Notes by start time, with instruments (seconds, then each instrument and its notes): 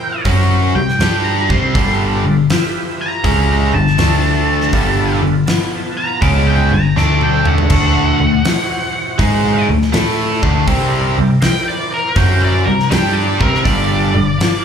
Already playing: tonewheel organ E4 A#4 C5, lead electric guitar G5
0.25 picked electric bass F#2, overdriven electric guitar F#3 C#4 F#4, kick, open hi-hat
0.75 picked electric bass C2, overdriven electric guitar C3 G3, lead electric guitar G5
0.89 snare
0.99 picked electric bass G2, overdriven electric guitar G3 D4 G4, snare, open hi-hat
1.24 lead electric guitar A#5
1.50 picked electric bass C2, overdriven electric guitar C3 G3 C4, lead electric guitar C6, kick
1.74 picked electric bass G1, overdriven electric guitar G2 D3 G3, tonewheel organ F4 A4 B4 D5, kick, open hi-hat
2.25 picked electric bass G1, overdriven electric guitar G2 D3
2.50 tonewheel organ F4 G4 B4 E5, snare, open hi-hat
3.01 lead electric guitar A#5
3.24 picked electric bass C#2, overdriven electric guitar C#3 G#3 C#4, kick, open hi-hat
3.74 picked electric bass G1, overdriven electric guitar G2 D3, lead electric guitar A5
3.87 snare
3.98 picked electric bass D2, overdriven electric guitar D3 A3 D4, tonewheel organ A3 D4 A4 D5, snare, open hi-hat
4.61 snare
4.73 picked electric bass G1, overdriven electric guitar G2 D3 G3, tonewheel organ D4 F4 A4 B4, kick, open hi-hat
5.22 picked electric bass G1, overdriven electric guitar G2 D3
5.46 tonewheel organ B3 F4 B4 A5, snare, open hi-hat
5.97 lead electric guitar A#5
6.22 picked electric bass C#2, overdriven electric guitar C#3 G#3 C#4, lead electric guitar D6, kick, open hi-hat
6.47 lead electric guitar G5
6.72 picked electric bass G1, overdriven electric guitar G2 D3, lead electric guitar A#5
6.96 picked electric bass D2, overdriven electric guitar D3 A3 D4, tonewheel organ A3 D4 A4 D5, lead electric guitar D6, snare
7.21 lead electric guitar G5, high tom
7.45 lead electric guitar F#5, mid tom
7.58 floor tom
7.70 picked electric bass D2, overdriven electric guitar D3 A3 D4, tonewheel organ E4 F#4 A4 C5, kick, crash
8.20 picked electric bass D2, overdriven electric guitar D3 A3
8.45 tonewheel organ E3 F#4 C5, snare, open hi-hat
9.19 picked electric bass G#2, overdriven electric guitar G#3 D#4 G#4, kick, open hi-hat
9.69 picked electric bass D2, overdriven electric guitar D3 A3
9.82 snare
9.93 picked electric bass A2, overdriven electric guitar A3 E4 A4, snare, open hi-hat
10.42 picked electric bass D2, overdriven electric guitar D3 A3 D4, kick
10.67 picked electric bass C2, overdriven electric guitar C3 G3 C4, tonewheel organ E4 G4 A#4 D5, kick, open hi-hat
11.17 picked electric bass C2, overdriven electric guitar C3 G3
11.41 tonewheel organ E4 A#4 C5, lead electric guitar G5, snare, open hi-hat
11.68 lead electric guitar D5
11.94 lead electric guitar A#4
12.16 picked electric bass F#2, overdriven electric guitar F#3 C#4 F#4, lead electric guitar G5, kick, open hi-hat
12.42 lead electric guitar D5
12.65 picked electric bass C2, overdriven electric guitar C3 G3, lead electric guitar A#4
12.79 snare
12.90 picked electric bass G2, overdriven electric guitar G3 D4 G4, lead electric guitar G5, snare, open hi-hat
13.13 lead electric guitar D5
13.38 picked electric bass C2, overdriven electric guitar C3 G3 C4, lead electric guitar A#4, kick
13.54 snare
13.63 picked electric bass G1, overdriven electric guitar G2 D3 G3, tonewheel organ F4 A4 B4 D5, lead electric guitar D5, kick, open hi-hat
14.14 picked electric bass G1, overdriven electric guitar G2 D3
14.37 tonewheel organ F4 B4 F5 A5, snare, open hi-hat